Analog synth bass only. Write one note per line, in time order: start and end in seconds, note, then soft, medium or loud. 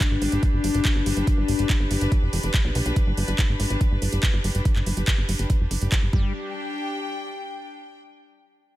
0.11 0.17 G#1 medium
0.22 0.28 G#1 loud
0.32 0.39 G#1 medium
0.53 0.60 G1 medium
0.64 0.70 G1 loud
0.74 0.81 G1 medium
0.96 1.02 G1 medium
1.06 1.13 G1 loud
1.17 1.23 G1 medium
1.38 1.44 G1 medium
1.48 1.55 G1 loud
1.59 1.65 G1 medium
1.80 1.86 G1 medium
1.91 1.97 G1 loud
2.01 2.08 G1 medium
2.22 2.29 F1 medium
2.33 2.39 F1 loud
2.44 2.50 F1 medium
2.65 2.71 B1 medium
2.75 2.82 B1 loud
2.86 2.92 B1 medium
3.07 3.13 G1 medium
3.17 3.24 G1 loud
3.28 3.34 G1 medium
3.49 3.55 G#1 medium
3.60 3.66 G#1 loud
3.70 3.77 G#1 medium
3.91 3.98 G1 medium
4.02 4.08 G1 loud
4.13 4.19 G1 medium
4.34 4.40 G1 medium
4.44 4.51 G1 loud
4.55 4.61 G1 medium
4.76 4.82 G1 medium
4.86 4.93 G1 loud
4.97 5.03 G1 medium
5.18 5.24 G1 medium
5.29 5.35 G1 loud
5.39 5.46 G1 medium
5.60 5.67 F1 medium
5.71 5.77 G1 loud
5.81 5.88 G1 medium
6.03 6.09 G1 medium
6.13 6.33 G1 loud